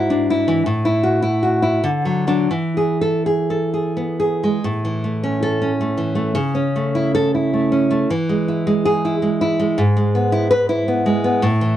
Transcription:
Already playing: G#2 E4 F#4
0.10 D4
0.30 E4
0.48 E3
0.66 A2
0.85 E4
1.03 F#4
1.22 E4
1.43 F#4
1.62 E4
1.84 D3
2.05 F#3
2.27 F#3 D4
2.51 E3
2.77 G#4
3.01 A4
3.26 G#4
3.50 A4
3.74 G#4
3.97 B3
4.20 G#4
4.44 G#3
4.65 A2
4.85 E3
5.04 A3
5.24 C#4
5.42 A4
5.62 C#4
5.81 A3
5.97 E3
6.15 A3
6.35 C#3
6.55 C#4
6.76 A3
6.95 E4
7.15 A4
7.35 E4
7.54 A3
7.72 C#4
7.91 A3
8.10 E3
8.29 G#3
8.48 E4
8.67 G#3
8.86 G#4
9.05 E4
9.22 G#3
9.41 E4
9.60 G#3
9.78 G#2
9.96 G#3
10.15 B3
10.32 E4
10.50 B4
10.69 E4
10.88 B3
11.06 G#3
11.24 B3
11.42 A2
11.61 E3

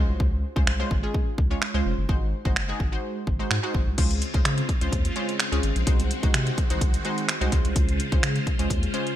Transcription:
Already playing: G#3 C#4 F4 C5
0.09 C2
0.20 C#2, kick
0.56 C#2 G#3 C#4 F4 C5, kick
0.67 C2, finger snap
0.79 G#3 C#4 F4 C5
0.91 G#1, kick
1.03 G#3 C#4 F4 G#4
1.14 kick
1.38 C#2, kick
1.50 G#3 C#4 F4 C#5
1.62 finger snap
1.74 C#2 G#3 C#4 F4 C5
1.85 F1
1.98 F#1
2.09 G#1 G#3 D#4 F#4 C5, kick
2.45 G#1 G#3 D#4 F#4 C5, kick
2.56 F#1, finger snap
2.69 G#3 D#4 F#4 G#4
2.80 G#1, kick
2.92 G#3 D#4 F#4 C5
3.27 G#1, kick
3.39 G#3 D#4 F#4 C5
3.51 G#2, finger snap
3.63 G#3 D#4 F#4 C5
3.74 G#1, kick
3.87 C2
3.98 C#2 C#3 G#3 C4 C#4 F4 C5, kick, closed hi-hat, crash
4.11 closed hi-hat
4.22 closed hi-hat
4.34 C#2 G#3 C#4 F4 C5, kick, closed hi-hat
4.45 C#3, finger snap, closed hi-hat
4.58 closed hi-hat
4.69 kick, closed hi-hat
4.81 C#2 G#3 C#4 F4 C5, closed hi-hat
4.92 D#2, kick, closed hi-hat
5.05 closed hi-hat
5.16 G#3 C#4 F4 C5, closed hi-hat
5.29 closed hi-hat
5.40 finger snap, closed hi-hat
5.52 C#2 G#3 C#4 F4 G#4, closed hi-hat
5.63 G#1, closed hi-hat
5.76 A#1, closed hi-hat
5.87 C2 D#3 G#3 D#4 F#4 C5, kick, closed hi-hat
6.00 closed hi-hat
6.11 closed hi-hat
6.23 C2 G#3 D#4 F#4 C5, kick, closed hi-hat
6.34 C3, finger snap, closed hi-hat
6.47 closed hi-hat
6.58 kick, closed hi-hat
6.70 C2 G#3 D#4 F#4 C5, closed hi-hat
6.81 C2, kick, closed hi-hat
6.94 closed hi-hat
7.05 G#3 D#4 F#4 C5, closed hi-hat
7.18 closed hi-hat
7.29 finger snap, closed hi-hat
7.41 C2 G#3 D#4 F#4 C5, closed hi-hat
7.52 C#2 C#3 G#3 C#4 F4 C5, kick, closed hi-hat
7.65 C2, closed hi-hat
7.76 C#2, kick, closed hi-hat
7.89 closed hi-hat
8.00 closed hi-hat
8.12 C#2 G#3 C#4 F4 C5, kick, closed hi-hat
8.23 C#3, finger snap, closed hi-hat
8.36 closed hi-hat
8.47 kick, closed hi-hat
8.59 C#2 G#3 C#4 F4 C5, closed hi-hat
8.70 D#2, kick, closed hi-hat
8.83 closed hi-hat
8.94 G#3 C#4 F4 C5, closed hi-hat
9.07 closed hi-hat

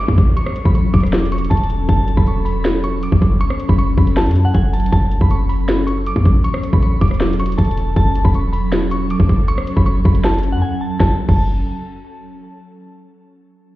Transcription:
Already playing: F#3 C#4 A4, downlifter
0.00 D6
0.08 F#2, kick
0.18 A1, kick, open hi-hat
0.37 C#6, closed hi-hat
0.46 cross-stick
0.56 closed hi-hat
0.65 A1 B5, kick
0.75 C#6, closed hi-hat
0.94 E1 D6, kick, closed hi-hat, open hi-hat
1.00 cross-stick, closed hi-hat
1.06 closed hi-hat
1.13 snare, closed hi-hat
1.19 closed hi-hat
1.25 closed hi-hat
1.32 C#6, closed hi-hat
1.38 closed hi-hat
1.45 closed hi-hat
1.50 E1 A5, kick, closed hi-hat
1.57 closed hi-hat
1.63 closed hi-hat
1.70 closed hi-hat
1.89 F#1 A5, kick, closed hi-hat
2.08 closed hi-hat
2.17 E1 B5, kick
2.27 C#6, closed hi-hat
2.45 B5, open hi-hat
2.65 snare, closed hi-hat
2.84 C#6, closed hi-hat
3.03 D6, closed hi-hat
3.12 F#1, kick
3.22 F#1, kick, open hi-hat
3.41 C#6, closed hi-hat
3.50 cross-stick
3.60 closed hi-hat
3.69 F#1 B5, kick
3.78 C#6, closed hi-hat
3.98 F#1 B5, kick, closed hi-hat
4.07 closed hi-hat
4.17 A5, snare, closed hi-hat
4.21 closed hi-hat
4.26 F#2, closed hi-hat
4.31 closed hi-hat
4.36 closed hi-hat
4.45 F#5
4.54 F#1 G#5, kick, closed hi-hat
4.73 A5, closed hi-hat, open hi-hat
4.80 closed hi-hat
4.86 closed hi-hat
4.92 F#1 F#3 A4 A5, kick, closed hi-hat
5.11 closed hi-hat
5.21 F#1 B5, kick
5.30 C#6, closed hi-hat
5.49 B5, open hi-hat
5.68 snare, closed hi-hat
5.87 C#6, closed hi-hat
6.06 D6, closed hi-hat
6.16 F#2, kick
6.25 A1, kick, open hi-hat
6.44 C#6, closed hi-hat
6.54 cross-stick
6.63 closed hi-hat
6.73 A1 B5, kick
6.82 C#6, closed hi-hat
7.01 E1 D6, kick, closed hi-hat, open hi-hat
7.08 cross-stick, closed hi-hat
7.14 closed hi-hat
7.20 snare, closed hi-hat
7.27 closed hi-hat
7.33 closed hi-hat
7.39 C#6, closed hi-hat
7.46 closed hi-hat
7.52 closed hi-hat
7.58 E1 A5, kick, closed hi-hat
7.65 closed hi-hat
7.71 closed hi-hat
7.77 closed hi-hat
7.96 F#1 C#4 A5, kick, closed hi-hat
8.15 closed hi-hat
8.25 E1 B5, kick
8.34 C#6, closed hi-hat
8.53 B5, open hi-hat
8.72 snare, closed hi-hat
8.91 C#6, closed hi-hat
9.10 D6, closed hi-hat
9.20 F#1, kick
9.29 F#1, kick, open hi-hat
9.48 C#6, closed hi-hat
9.58 cross-stick
9.67 closed hi-hat
9.76 F#1 B5, kick
9.86 C#6, closed hi-hat
10.05 F#1 B5, kick, closed hi-hat
10.15 closed hi-hat
10.24 A5, snare, closed hi-hat
10.29 closed hi-hat
10.34 closed hi-hat
10.38 closed hi-hat
10.43 closed hi-hat
10.52 F#2 F#5
10.62 G#5
10.81 A5
11.00 F#1 A5, kick, snare
11.29 F#1 A5, kick, crash

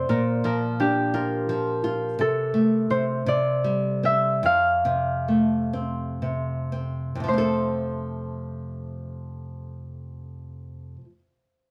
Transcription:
Already playing: A4 C5 D5
0.09 A#2 A#4
0.44 F3 A#4
0.80 D4 G4
1.14 F4 A#4
1.49 F3
1.84 F4
2.19 C3 A4
2.54 A3
2.90 C3 C5
3.26 C3 D5
3.64 G3
4.03 C4 E5
4.43 F2 F5
4.85 C3
5.28 A3
5.73 C4
6.22 C3
6.72 C4
7.15 F2
7.20 C3 F3
7.28 A3 C5
7.33 C4
7.38 A4

